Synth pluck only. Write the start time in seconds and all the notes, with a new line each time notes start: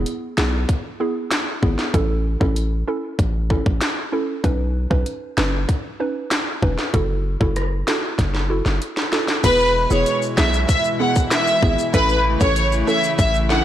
0.37 B3 E4 G#4
1.00 B3 E4 G#4
1.62 B3 E4 G#4
1.94 C#4 E4 A4
2.40 C#4 E4 A4
2.87 C#4 E4 A4
3.50 C#4 E4 A4
4.12 C#4 E4 A4
4.44 C#4 D#4 B4
4.90 C#4 D#4 B4
5.37 C#4 D#4 B4
6.00 C#4 D#4 B4
6.62 C#4 D#4 B4
6.93 E4 F#4 A4
7.40 E4 F#4 A4
7.87 E4 F#4 A4
8.50 E4 F#4 A4
9.12 E4 F#4 A4
9.43 B3 E4 G#4
9.90 B3 E4 G#4
10.37 B3 E4 G#4
11.00 B3 E4 G#4
11.62 B3 E4 G#4
11.94 C#4 E4 A4
12.40 C#4 E4 A4
12.87 C#4 E4 A4
13.50 C#4 E4 A4